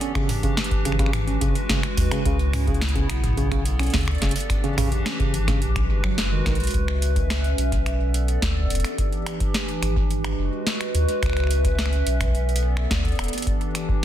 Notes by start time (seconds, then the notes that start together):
Already playing: E3 D4 G4
0.01 C#4, closed hi-hat
0.15 C#3, finger snap, kick, closed hi-hat
0.29 mid tom, open hi-hat
0.43 C#3, kick, closed hi-hat
0.57 finger snap, snare
0.64 closed hi-hat
0.71 kick, closed hi-hat
0.85 G#1 C#3, finger snap, closed hi-hat
0.92 finger snap
0.99 C#3, finger snap, kick, closed hi-hat
1.06 finger snap
1.13 G#3 F#4 B4, finger snap, closed hi-hat, mid tom
1.27 C#4, closed hi-hat
1.41 F#1 C#3, kick, closed hi-hat
1.55 closed hi-hat
1.69 C#3, finger snap, kick, snare, closed hi-hat
1.83 finger snap, closed hi-hat
1.97 D#2, kick, open hi-hat
2.11 C#3, finger snap, closed hi-hat
2.25 C#2 C#3 B3 E4, kick, closed hi-hat
2.39 closed hi-hat
2.53 C#4, finger snap, mid tom, open hi-hat
2.67 C#3, kick, closed hi-hat
2.74 closed hi-hat
2.81 finger snap, snare, closed hi-hat
2.89 closed hi-hat
2.95 C#3, kick, closed hi-hat
3.10 B1, finger snap, closed hi-hat
3.24 kick, closed hi-hat, mid tom
3.28 mid tom
3.33 mid tom
3.37 C#3 A4 D5, closed hi-hat, mid tom
3.42 mid tom
3.47 mid tom
3.52 C#3, finger snap, kick, closed hi-hat
3.65 closed hi-hat
3.79 C#4, finger snap, closed hi-hat
3.83 closed hi-hat
3.86 closed hi-hat
3.90 C#3, kick, snare, closed hi-hat
3.94 D2, closed hi-hat
3.98 closed hi-hat
4.01 closed hi-hat
4.03 closed hi-hat
4.05 finger snap, closed hi-hat
4.08 closed hi-hat
4.11 closed hi-hat
4.15 closed hi-hat
4.18 E1 C#3, kick, snare, closed hi-hat
4.22 E3 D4 G4, closed hi-hat
4.25 closed hi-hat
4.29 closed hi-hat
4.31 closed hi-hat
4.36 open hi-hat
4.41 closed hi-hat
4.50 finger snap, kick, closed hi-hat
4.64 C#3, closed hi-hat
4.78 C#3, finger snap, kick, mid tom, open hi-hat
4.81 kick
4.85 kick
4.88 kick
4.92 kick, closed hi-hat
4.95 kick
4.99 kick
5.02 C#4, finger snap, kick, snare, closed hi-hat
5.20 C#3, kick, closed hi-hat
5.34 G#1, closed hi-hat
5.48 C#3, finger snap, kick, snare, closed hi-hat, mid tom
5.62 B1 G#3 F#4 B4, closed hi-hat
5.76 finger snap, kick, closed hi-hat
5.90 F#1
6.04 F#3, finger snap, kick
6.18 snare, closed hi-hat
6.32 D#3
6.46 B1 D#3, finger snap, kick, snare, closed hi-hat
6.55 closed hi-hat
6.60 closed hi-hat
6.64 closed hi-hat
6.67 closed hi-hat
6.71 C#2 C#4 B4 E5, kick, closed hi-hat
6.74 closed hi-hat
6.88 finger snap
7.02 closed hi-hat
7.16 kick, closed hi-hat
7.30 finger snap, snare, closed hi-hat
7.44 closed hi-hat
7.58 B1, closed hi-hat
7.72 kick, closed hi-hat
7.86 B3 A4 D5, finger snap, closed hi-hat
8.14 closed hi-hat
8.28 closed hi-hat
8.42 D2, kick, snare, closed hi-hat
8.56 kick
8.61 kick
8.66 kick
8.70 E1 E3 D4 G4, kick, closed hi-hat
8.75 kick, closed hi-hat
8.80 kick
8.84 finger snap, closed hi-hat
8.98 kick, closed hi-hat
9.13 closed hi-hat
9.26 finger snap, closed hi-hat
9.40 kick, closed hi-hat
9.54 snare, closed hi-hat
9.68 closed hi-hat
9.82 G#1, finger snap, closed hi-hat
9.96 kick
10.10 G#3 F#4 B4, closed hi-hat
10.24 finger snap, closed hi-hat
10.39 F#1
10.67 snare, closed hi-hat
10.81 finger snap, closed hi-hat
10.94 D#2, closed hi-hat
11.09 closed hi-hat
11.23 C#2 C#4 E5, finger snap, kick, closed hi-hat
11.26 finger snap
11.30 finger snap
11.33 finger snap
11.37 finger snap, closed hi-hat
11.40 finger snap
11.44 finger snap
11.47 finger snap, closed hi-hat
11.65 kick, closed hi-hat
11.79 snare, closed hi-hat
11.86 finger snap
11.93 closed hi-hat
12.07 B1, closed hi-hat
12.21 finger snap, kick, closed hi-hat
12.24 kick
12.28 kick
12.31 B3 A4 D5, kick, closed hi-hat
12.49 closed hi-hat
12.56 closed hi-hat
12.77 finger snap
12.91 D2, kick, snare, closed hi-hat
13.05 kick, closed hi-hat
13.08 closed hi-hat
13.12 closed hi-hat
13.15 E1 E3 D4, finger snap, closed hi-hat
13.19 G4, closed hi-hat
13.22 closed hi-hat
13.26 closed hi-hat
13.28 closed hi-hat
13.33 closed hi-hat
13.38 closed hi-hat
13.42 closed hi-hat
13.47 kick, closed hi-hat
13.61 closed hi-hat
13.75 finger snap, closed hi-hat
13.89 kick